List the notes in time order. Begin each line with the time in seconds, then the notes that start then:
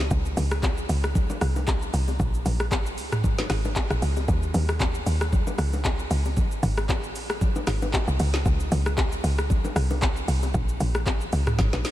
0.00 high bongo
0.11 C#2, kick, low conga, shaker
0.25 shaker
0.37 C#2, open hi-hat, low bongo, low conga, shaker
0.51 cross-stick, shaker
0.63 kick, clap, high bongo, shaker
0.77 shaker
0.89 C#2, open hi-hat, shaker
1.04 cross-stick, shaker
1.15 kick, low conga, shaker
1.30 low bongo, shaker
1.41 C2, cross-stick, open hi-hat, shaker
1.56 low bongo, shaker
1.67 kick, clap, high bongo, shaker
1.82 shaker
1.94 C2, open hi-hat, shaker
2.08 high bongo, shaker
2.20 A#1, kick, low conga, shaker
2.34 shaker
2.46 A#1, open hi-hat, low bongo, low conga, shaker
2.60 cross-stick, shaker
2.72 kick, clap, high bongo, shaker
2.86 shaker
2.98 C#2, open hi-hat, shaker
3.12 cross-stick, mid tom, shaker
3.24 kick, low conga, shaker
3.38 snare, low bongo, shaker
3.50 G#1, cross-stick, snare, open hi-hat, shaker
3.64 low bongo, shaker
3.76 kick, clap, high bongo, shaker
3.90 A#1, cross-stick, shaker
4.02 C#2, open hi-hat, shaker
4.17 high bongo, shaker
4.28 D#2, kick, low conga, shaker
4.43 shaker
4.54 D#2, open hi-hat, low bongo, low conga, shaker
4.69 cross-stick, shaker
4.80 kick, clap, high bongo, shaker
4.95 shaker
5.06 D#2, open hi-hat, shaker
5.21 cross-stick, shaker
5.32 kick, low conga, shaker
5.47 low bongo, shaker
5.58 C#2, cross-stick, open hi-hat, shaker
5.73 low bongo, shaker
5.84 kick, clap, high bongo, shaker
5.99 shaker
6.11 C#2, open hi-hat, shaker
6.25 high bongo, shaker
6.37 G#1, kick, low conga, shaker
6.51 shaker
6.63 G#1, open hi-hat, low bongo, low conga, shaker
6.77 cross-stick, shaker
6.89 kick, clap, high bongo, shaker
7.04 shaker
7.15 A#1, open hi-hat, shaker
7.30 cross-stick, shaker
7.41 kick, low conga, shaker
7.56 low bongo, shaker
7.67 G#1, cross-stick, snare, open hi-hat, shaker
7.82 low bongo, shaker
7.93 kick, clap, high bongo, shaker
8.08 C2, shaker
8.19 C#2, open hi-hat, shaker
8.34 snare, high bongo, shaker
8.46 C#2, kick, low conga, shaker
8.60 shaker
8.72 C#2, open hi-hat, low bongo, low conga, shaker
8.86 cross-stick, shaker
8.98 kick, clap, high bongo, shaker
9.12 shaker
9.24 C#2, open hi-hat, shaker
9.38 cross-stick, shaker
9.50 kick, low conga, shaker
9.65 low bongo, shaker
9.76 C2, cross-stick, open hi-hat, shaker
9.90 low bongo, shaker
10.02 kick, clap, high bongo, shaker
10.16 shaker
10.28 C2, open hi-hat, shaker
10.43 high bongo, shaker
10.54 A#1, kick, low conga, shaker
10.69 shaker
10.80 A#1, open hi-hat, low conga, shaker
10.95 cross-stick, shaker
11.06 kick, clap, high bongo, shaker
11.21 shaker
11.33 C#2, open hi-hat, shaker
11.47 cross-stick, mid tom, shaker
11.59 G#1, kick, snare, low conga, shaker
11.73 A#1, snare, low bongo, shaker
11.85 snare, open hi-hat, shaker